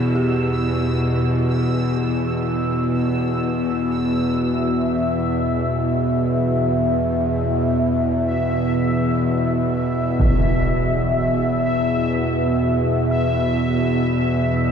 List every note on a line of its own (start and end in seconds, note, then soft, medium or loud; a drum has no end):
0.00 4.37 E2 medium
0.00 4.37 B2 medium
0.00 2.05 D#4 soft
0.00 4.39 E6 medium
0.15 5.96 G4 soft
4.38 14.72 E2 medium
4.38 14.72 B2 medium
4.38 14.72 E5 medium
10.20 impact medium